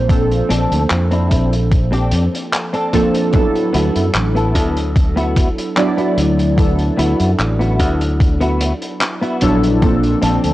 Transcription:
Already playing: A#1 F3 A#3 C4 D4 C5
0.08 F3 A#3 C4 D4 A4, kick, closed hi-hat
0.31 closed hi-hat
0.49 A#1 C4 D4 A4, closed hi-hat
0.71 D2, closed hi-hat
0.90 F2, clap, closed hi-hat
1.11 C4 D4 E4, closed hi-hat
1.31 A#1, kick, closed hi-hat
1.53 closed hi-hat
1.72 kick, closed hi-hat
1.92 C4 D4 G4, closed hi-hat
2.11 F2, closed hi-hat
2.35 closed hi-hat
2.52 muted clean electric guitar stroke, clap, closed hi-hat
2.73 C4 D4 A4, closed hi-hat
2.92 F3 A#3 C4 D4 A4, kick, closed hi-hat
3.13 muted clean electric guitar stroke, closed hi-hat
3.32 F#3 B3 D4 E4 A4, kick, closed hi-hat
3.56 closed hi-hat
3.73 D2 B3 E4 F#4, closed hi-hat
3.96 F#2, closed hi-hat
4.15 A1, clap, closed hi-hat
4.35 B3 E4 A4, closed hi-hat
4.55 D2, kick, closed hi-hat
4.77 closed hi-hat
4.96 kick, closed hi-hat
5.16 B3 E4 F#4, closed hi-hat
5.36 kick, closed hi-hat
5.58 closed hi-hat
5.76 F#3 B3 D4 E4 D5, muted clean electric guitar stroke, clap, closed hi-hat
5.97 B3 E4 F#4, closed hi-hat
6.18 D2, closed hi-hat
6.38 muted clean electric guitar stroke, closed hi-hat
6.56 F#3 B3 D4 E4 A4, kick, closed hi-hat
6.79 closed hi-hat
6.97 D2 B3 E4 F#4, closed hi-hat
7.20 F#2, closed hi-hat
7.39 A1, clap, closed hi-hat
7.59 B3 E4 F#4, closed hi-hat
7.79 D2, kick, closed hi-hat
8.01 closed hi-hat
8.20 kick, closed hi-hat
8.40 B3 E4 F#4, closed hi-hat
8.60 closed hi-hat
8.82 closed hi-hat
9.00 muted clean electric guitar stroke, clap, closed hi-hat
9.21 B3 E4 F#4, closed hi-hat
9.41 A#1 F#3 B3 D4 E4 A4, kick, closed hi-hat
9.62 muted clean electric guitar stroke, closed hi-hat
9.81 F3 A#3 C4 D4 A4, kick, closed hi-hat
10.03 closed hi-hat
10.22 A#1 C4 D4 A4, closed hi-hat
10.44 D2, closed hi-hat

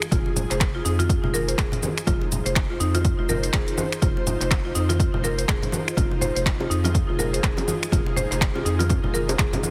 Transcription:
Already playing: D#4 F4 G#4
0.02 finger snap, shaker
0.11 F1 F4, kick, closed hi-hat, high conga, low conga, shaker
0.26 muted conga
0.36 closed hi-hat, low conga, shaker
0.50 F1 C5, clap, closed hi-hat, shaker
0.60 finger snap, kick, clap, closed hi-hat, muted conga, shaker
0.75 F4
0.85 F2 D#4, closed hi-hat, shaker
0.99 F4, closed hi-hat, muted conga, high conga, shaker
1.09 F4, kick, closed hi-hat, shaker
1.24 F1 F4, low conga
1.34 A#4, muted conga, high conga, shaker
1.48 C5, closed hi-hat, shaker
1.58 F1 G#4, finger snap, kick, clap, closed hi-hat, shaker
1.72 closed hi-hat, muted conga, low conga
1.83 high conga, shaker
1.98 finger snap, shaker
2.07 F1 F4 C5, kick, closed hi-hat, high conga, low conga, shaker
2.21 muted conga
2.32 closed hi-hat, low conga, shaker
2.45 F1 C5, closed hi-hat, shaker
2.56 finger snap, kick, clap, closed hi-hat, muted conga, shaker
2.70 F4
2.80 F2 D#4, closed hi-hat, shaker
2.95 F4, closed hi-hat, muted conga, high conga, shaker
3.04 F4, kick, closed hi-hat, shaker
3.19 F1 F4
3.29 A#4, muted conga, high conga, low conga, shaker
3.43 C5, closed hi-hat, shaker
3.53 F1 G#4, finger snap, kick, clap, closed hi-hat, shaker
3.67 closed hi-hat, muted conga
3.78 high conga, shaker
3.92 finger snap, shaker
4.02 F1 F4, kick, closed hi-hat, high conga, low conga, shaker
4.17 muted conga
4.27 closed hi-hat, low conga, shaker
4.40 F1 C5, clap, closed hi-hat, shaker
4.51 finger snap, kick, clap, closed hi-hat, muted conga, shaker
4.65 F4
4.75 F2 D#4, closed hi-hat, shaker
4.89 F4, closed hi-hat, muted conga, high conga, shaker
5.00 F4, kick, closed hi-hat, shaker
5.14 F1 F4, low conga
5.24 A#4, muted conga, high conga, shaker
5.38 C5, closed hi-hat, shaker
5.48 F1 G#4, finger snap, kick, clap, closed hi-hat, shaker
5.62 closed hi-hat, muted conga, low conga
5.72 high conga, shaker
5.88 finger snap, shaker
5.97 F1 F4 G#4, kick, closed hi-hat, high conga, low conga, shaker
6.11 muted conga
6.21 C5, closed hi-hat, low conga, shaker
6.36 F1 C5, closed hi-hat, shaker
6.46 finger snap, kick, clap, closed hi-hat, muted conga, shaker
6.60 F4, high bongo
6.70 F2 D#4, closed hi-hat, shaker
6.84 F4, closed hi-hat, low bongo, muted conga, high conga, shaker
6.94 F4, kick, closed hi-hat, shaker
7.09 F1 F4
7.19 A#4, muted conga, high conga, low conga, shaker
7.33 C5, closed hi-hat, shaker
7.43 F1 G#4, finger snap, kick, clap, closed hi-hat, shaker
7.57 closed hi-hat, high bongo, low bongo, muted conga
7.68 high conga, shaker
7.83 finger snap, shaker
7.92 F1 F4, kick, closed hi-hat, low bongo, high conga, low conga, shaker
8.06 muted conga
8.16 C5, closed hi-hat, low conga, shaker
8.31 F1 C5, clap, closed hi-hat, shaker
8.41 finger snap, kick, clap, closed hi-hat, muted conga, shaker
8.55 F4, high bongo
8.65 F2 D#4, closed hi-hat, shaker
8.79 F4, closed hi-hat, low bongo, muted conga, high conga, shaker
8.89 F4, kick, closed hi-hat, high bongo, low bongo, shaker
9.04 F1 F4, low conga
9.14 A#4, muted conga, high conga, shaker
9.28 C5, closed hi-hat, high bongo, shaker
9.38 F1 G#4, finger snap, kick, clap, closed hi-hat, shaker
9.53 closed hi-hat, high bongo, muted conga, low conga
9.63 high conga, shaker

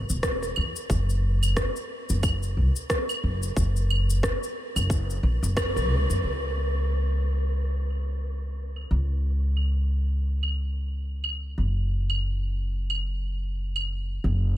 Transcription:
0.10 E1, cabasa
0.23 kick, cross-stick, cabasa
0.42 cross-stick, cabasa
0.56 E2, claves
0.76 cabasa
0.90 F#1, kick, cabasa
1.10 cabasa
1.43 cabasa, claves
1.57 kick, cross-stick, cabasa
1.76 cabasa
2.09 F#1, cabasa
2.23 kick, cabasa, claves
2.43 cabasa
2.57 C#2
2.76 cabasa
2.90 kick, cross-stick, cabasa
3.09 cabasa, claves
3.24 F#1
3.43 cabasa
3.57 F#1, kick, cabasa
3.76 cabasa
3.90 claves
4.10 cabasa
4.23 kick, cross-stick, cabasa
4.43 cabasa
4.76 F#1, cabasa, claves
4.90 kick, cabasa
5.10 cabasa
5.23 A#1
5.43 F#1, cabasa
5.57 kick, cross-stick, cabasa, claves
5.76 A#1, cross-stick, cabasa
5.90 C#2
6.10 F#2, cabasa
6.24 C#2, claves
7.10 claves
7.90 claves
8.76 claves
8.91 C#2
9.57 claves
10.43 claves
11.24 claves
11.58 F#1
12.10 claves
12.90 claves
13.76 claves
14.24 F#1

